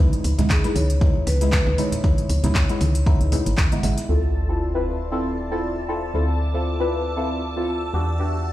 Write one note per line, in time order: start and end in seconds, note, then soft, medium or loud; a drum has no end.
0.00 0.23 G#3 medium
0.00 0.23 B3 medium
0.00 0.23 D#4 medium
0.00 0.23 E4 loud
0.13 closed hi-hat medium
0.24 0.33 C#2 medium
0.24 closed hi-hat medium
0.24 open hi-hat medium
0.38 0.46 C#2 medium
0.38 0.61 G#3 medium
0.38 0.61 B3 medium
0.38 0.61 D#4 medium
0.38 0.61 E4 medium
0.38 snare medium
0.38 closed hi-hat medium
0.38 high conga medium
0.38 low conga medium
0.50 0.76 G#4 medium
0.50 kick loud
0.50 snare loud
0.50 clap loud
0.50 closed hi-hat medium
0.64 0.88 G#3 loud
0.64 0.88 B3 medium
0.64 0.88 D#4 medium
0.64 0.88 E4 loud
0.64 snare soft
0.64 closed hi-hat medium
0.75 1.20 C#2 loud
0.75 1.23 C#5 loud
0.75 closed hi-hat medium
0.75 open hi-hat medium
0.75 high conga medium
0.90 closed hi-hat medium
1.01 1.25 G#3 loud
1.01 1.25 B3 medium
1.01 1.25 D#4 medium
1.01 1.26 E4 loud
1.01 kick loud
1.01 closed hi-hat medium
1.16 high conga medium
1.27 1.58 C#2 loud
1.27 1.80 B4 loud
1.27 snare soft
1.27 closed hi-hat medium
1.27 open hi-hat loud
1.41 1.75 G#3 medium
1.41 1.75 B3 medium
1.41 1.76 D#4 medium
1.41 1.76 E4 loud
1.41 snare soft
1.41 closed hi-hat medium
1.52 kick loud
1.52 snare loud
1.52 clap loud
1.52 closed hi-hat medium
1.67 1.74 C#2 medium
1.67 snare soft
1.67 high conga medium
1.78 1.94 G#3 medium
1.78 1.94 B3 medium
1.78 1.94 D#4 medium
1.78 1.94 E4 loud
1.78 3.54 C#5 loud
1.78 closed hi-hat medium
1.78 open hi-hat medium
1.92 closed hi-hat medium
1.92 closed hi-hat soft
1.92 low conga medium
2.04 2.28 G#3 medium
2.04 2.28 B3 medium
2.04 2.28 D#4 medium
2.04 2.28 E4 loud
2.04 kick loud
2.04 closed hi-hat medium
2.04 high conga medium
2.18 closed hi-hat medium
2.29 2.38 C#2 medium
2.29 closed hi-hat medium
2.29 open hi-hat loud
2.43 2.51 C#2 medium
2.43 2.66 G#3 medium
2.43 2.66 B3 medium
2.43 2.66 D#4 medium
2.43 2.66 E4 medium
2.43 snare soft
2.43 closed hi-hat medium
2.43 high conga medium
2.43 low conga loud
2.55 kick loud
2.55 snare loud
2.55 clap loud
2.55 closed hi-hat medium
2.69 2.93 G#3 loud
2.69 2.93 B3 medium
2.69 2.93 D#4 medium
2.69 2.93 E4 loud
2.69 closed hi-hat medium
2.81 3.12 C#2 loud
2.81 closed hi-hat medium
2.81 open hi-hat medium
2.81 high conga medium
2.95 closed hi-hat medium
3.06 3.30 G#3 loud
3.06 3.30 B3 medium
3.06 3.30 D#4 medium
3.06 3.30 E4 loud
3.06 kick loud
3.06 closed hi-hat medium
3.21 3.35 C#2 medium
3.21 closed hi-hat soft
3.21 high conga medium
3.32 3.48 G#3 medium
3.32 3.48 B3 medium
3.32 3.48 D#4 medium
3.32 3.48 E4 medium
3.32 closed hi-hat medium
3.32 open hi-hat loud
3.32 low conga medium
3.46 3.53 G#1 medium
3.46 closed hi-hat soft
3.46 closed hi-hat medium
3.57 kick loud
3.57 clap loud
3.57 closed hi-hat medium
3.72 3.80 G#3 medium
3.72 3.81 B3 medium
3.72 3.81 D#4 medium
3.72 3.81 E4 medium
3.72 closed hi-hat soft
3.72 high conga medium
3.83 3.92 G#1 medium
3.83 4.06 G#3 medium
3.83 4.06 B3 medium
3.83 4.06 D#4 medium
3.83 4.06 E4 medium
3.83 snare soft
3.83 closed hi-hat medium
3.83 open hi-hat medium
3.83 low conga medium
3.98 snare soft
3.98 closed hi-hat medium
4.09 6.12 D2 medium
4.09 4.33 C4 medium
4.09 4.33 E4 medium
4.09 4.33 F4 medium
4.09 4.33 A4 medium
4.09 7.90 D5 medium
4.09 7.90 E5 medium
4.09 8.53 A5 medium
4.09 6.12 C6 medium
4.09 8.53 E6 medium
4.09 sub drop medium
4.49 4.71 C4 medium
4.49 4.71 E4 medium
4.49 4.71 F4 medium
4.49 4.71 A4 medium
4.74 4.98 C4 medium
4.74 4.98 E4 medium
4.74 4.98 F4 medium
4.74 4.98 B4 loud
5.11 5.36 C4 medium
5.11 5.36 E4 medium
5.11 5.36 F4 medium
5.11 5.36 A4 loud
5.51 5.86 C4 medium
5.51 5.86 E4 medium
5.51 5.86 F4 medium
5.51 5.86 A4 loud
5.88 6.04 C4 medium
5.88 6.05 E4 medium
5.88 6.05 F4 medium
5.88 6.05 A4 medium
6.14 7.91 D2 medium
6.14 6.38 C4 medium
6.14 6.38 E4 medium
6.14 6.38 F4 medium
6.14 6.38 A4 medium
6.14 7.92 D6 medium
6.54 6.76 C4 medium
6.54 6.76 E4 medium
6.54 6.76 F4 medium
6.54 6.76 A4 medium
6.79 7.03 C4 loud
6.79 7.03 E4 medium
6.79 7.03 F4 medium
6.79 7.04 B4 loud
7.16 7.41 C4 medium
7.16 7.41 E4 medium
7.16 7.41 F4 medium
7.16 7.41 A4 loud
7.56 7.91 C4 medium
7.56 7.91 E4 medium
7.56 7.91 F4 medium
7.56 7.91 A4 loud
7.93 8.53 E2 medium
7.93 8.10 B3 medium
7.93 8.10 D4 medium
7.93 8.10 F#4 medium
7.93 8.10 G4 loud
7.93 8.53 D5 medium
7.93 8.53 E5 medium
7.93 8.53 F#5 medium
8.19 8.43 B3 medium
8.19 8.43 D4 medium
8.19 8.43 F#4 medium
8.19 8.43 G4 medium